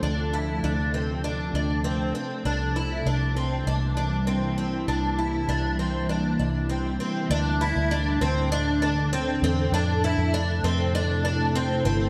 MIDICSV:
0, 0, Header, 1, 4, 480
1, 0, Start_track
1, 0, Key_signature, -1, "minor"
1, 0, Tempo, 606061
1, 25, Time_signature, 4, 2, 24, 8
1, 9578, End_track
2, 0, Start_track
2, 0, Title_t, "Twelve-string acoustic guitar"
2, 0, Program_c, 0, 25
2, 22, Note_on_c, 0, 62, 76
2, 263, Note_off_c, 0, 62, 0
2, 265, Note_on_c, 0, 64, 61
2, 505, Note_off_c, 0, 64, 0
2, 505, Note_on_c, 0, 62, 70
2, 741, Note_off_c, 0, 62, 0
2, 745, Note_on_c, 0, 60, 70
2, 980, Note_off_c, 0, 60, 0
2, 983, Note_on_c, 0, 62, 75
2, 1218, Note_off_c, 0, 62, 0
2, 1227, Note_on_c, 0, 62, 65
2, 1456, Note_off_c, 0, 62, 0
2, 1459, Note_on_c, 0, 60, 70
2, 1693, Note_off_c, 0, 60, 0
2, 1702, Note_on_c, 0, 60, 64
2, 1940, Note_off_c, 0, 60, 0
2, 1944, Note_on_c, 0, 62, 73
2, 2184, Note_off_c, 0, 62, 0
2, 2186, Note_on_c, 0, 64, 65
2, 2425, Note_off_c, 0, 64, 0
2, 2427, Note_on_c, 0, 62, 71
2, 2662, Note_off_c, 0, 62, 0
2, 2665, Note_on_c, 0, 60, 67
2, 2905, Note_off_c, 0, 60, 0
2, 2908, Note_on_c, 0, 62, 75
2, 3133, Note_off_c, 0, 62, 0
2, 3143, Note_on_c, 0, 62, 67
2, 3379, Note_off_c, 0, 62, 0
2, 3382, Note_on_c, 0, 60, 68
2, 3616, Note_off_c, 0, 60, 0
2, 3626, Note_on_c, 0, 60, 64
2, 3863, Note_off_c, 0, 60, 0
2, 3866, Note_on_c, 0, 62, 78
2, 4105, Note_off_c, 0, 62, 0
2, 4107, Note_on_c, 0, 64, 64
2, 4346, Note_off_c, 0, 64, 0
2, 4346, Note_on_c, 0, 62, 76
2, 4584, Note_off_c, 0, 62, 0
2, 4587, Note_on_c, 0, 60, 72
2, 4823, Note_off_c, 0, 60, 0
2, 4826, Note_on_c, 0, 62, 78
2, 5054, Note_off_c, 0, 62, 0
2, 5064, Note_on_c, 0, 62, 62
2, 5299, Note_off_c, 0, 62, 0
2, 5302, Note_on_c, 0, 60, 68
2, 5535, Note_off_c, 0, 60, 0
2, 5544, Note_on_c, 0, 60, 67
2, 5783, Note_off_c, 0, 60, 0
2, 5786, Note_on_c, 0, 62, 91
2, 6025, Note_off_c, 0, 62, 0
2, 6027, Note_on_c, 0, 64, 76
2, 6266, Note_off_c, 0, 64, 0
2, 6266, Note_on_c, 0, 62, 83
2, 6502, Note_off_c, 0, 62, 0
2, 6505, Note_on_c, 0, 60, 84
2, 6744, Note_off_c, 0, 60, 0
2, 6747, Note_on_c, 0, 62, 91
2, 6976, Note_off_c, 0, 62, 0
2, 6986, Note_on_c, 0, 62, 72
2, 7225, Note_off_c, 0, 62, 0
2, 7230, Note_on_c, 0, 60, 86
2, 7465, Note_off_c, 0, 60, 0
2, 7475, Note_on_c, 0, 60, 79
2, 7708, Note_off_c, 0, 60, 0
2, 7712, Note_on_c, 0, 62, 92
2, 7948, Note_off_c, 0, 62, 0
2, 7952, Note_on_c, 0, 64, 76
2, 8188, Note_off_c, 0, 64, 0
2, 8188, Note_on_c, 0, 62, 93
2, 8426, Note_off_c, 0, 62, 0
2, 8429, Note_on_c, 0, 60, 88
2, 8667, Note_off_c, 0, 60, 0
2, 8671, Note_on_c, 0, 62, 95
2, 8898, Note_off_c, 0, 62, 0
2, 8907, Note_on_c, 0, 62, 81
2, 9146, Note_off_c, 0, 62, 0
2, 9151, Note_on_c, 0, 60, 86
2, 9377, Note_off_c, 0, 60, 0
2, 9387, Note_on_c, 0, 60, 82
2, 9578, Note_off_c, 0, 60, 0
2, 9578, End_track
3, 0, Start_track
3, 0, Title_t, "Ambient pad"
3, 0, Program_c, 1, 92
3, 0, Note_on_c, 1, 48, 71
3, 0, Note_on_c, 1, 53, 69
3, 0, Note_on_c, 1, 57, 65
3, 0, Note_on_c, 1, 62, 63
3, 0, Note_on_c, 1, 69, 80
3, 1913, Note_off_c, 1, 57, 0
3, 1915, Note_off_c, 1, 53, 0
3, 1915, Note_off_c, 1, 62, 0
3, 1917, Note_off_c, 1, 69, 0
3, 1947, Note_on_c, 1, 55, 64
3, 1947, Note_on_c, 1, 64, 82
3, 1948, Note_on_c, 1, 52, 70
3, 1948, Note_on_c, 1, 58, 63
3, 5754, Note_off_c, 1, 55, 0
3, 5754, Note_off_c, 1, 64, 0
3, 5755, Note_off_c, 1, 52, 0
3, 5755, Note_off_c, 1, 58, 0
3, 5756, Note_off_c, 1, 48, 0
3, 5784, Note_on_c, 1, 62, 72
3, 5786, Note_on_c, 1, 69, 86
3, 5787, Note_on_c, 1, 45, 79
3, 5787, Note_on_c, 1, 50, 71
3, 7685, Note_off_c, 1, 62, 0
3, 7686, Note_off_c, 1, 45, 0
3, 7687, Note_off_c, 1, 50, 0
3, 7707, Note_on_c, 1, 48, 85
3, 7707, Note_on_c, 1, 57, 76
3, 7711, Note_on_c, 1, 64, 76
3, 9578, Note_off_c, 1, 48, 0
3, 9578, Note_off_c, 1, 57, 0
3, 9578, Note_off_c, 1, 64, 0
3, 9578, Note_off_c, 1, 69, 0
3, 9578, End_track
4, 0, Start_track
4, 0, Title_t, "Fingered electric bass"
4, 0, Program_c, 2, 33
4, 19, Note_on_c, 2, 38, 90
4, 478, Note_off_c, 2, 38, 0
4, 502, Note_on_c, 2, 38, 99
4, 1191, Note_off_c, 2, 38, 0
4, 1217, Note_on_c, 2, 38, 82
4, 1677, Note_off_c, 2, 38, 0
4, 1941, Note_on_c, 2, 36, 99
4, 2399, Note_off_c, 2, 36, 0
4, 2422, Note_on_c, 2, 36, 95
4, 2879, Note_off_c, 2, 36, 0
4, 2904, Note_on_c, 2, 36, 90
4, 3832, Note_off_c, 2, 36, 0
4, 3865, Note_on_c, 2, 36, 88
4, 4321, Note_off_c, 2, 36, 0
4, 4343, Note_on_c, 2, 36, 98
4, 5032, Note_off_c, 2, 36, 0
4, 5065, Note_on_c, 2, 36, 85
4, 5521, Note_off_c, 2, 36, 0
4, 5781, Note_on_c, 2, 38, 107
4, 6125, Note_off_c, 2, 38, 0
4, 6146, Note_on_c, 2, 38, 96
4, 6488, Note_off_c, 2, 38, 0
4, 6502, Note_on_c, 2, 38, 97
4, 7432, Note_off_c, 2, 38, 0
4, 7461, Note_on_c, 2, 40, 96
4, 7691, Note_off_c, 2, 40, 0
4, 7698, Note_on_c, 2, 41, 119
4, 8043, Note_off_c, 2, 41, 0
4, 8061, Note_on_c, 2, 41, 99
4, 8405, Note_off_c, 2, 41, 0
4, 8422, Note_on_c, 2, 41, 105
4, 9352, Note_off_c, 2, 41, 0
4, 9383, Note_on_c, 2, 31, 99
4, 9578, Note_off_c, 2, 31, 0
4, 9578, End_track
0, 0, End_of_file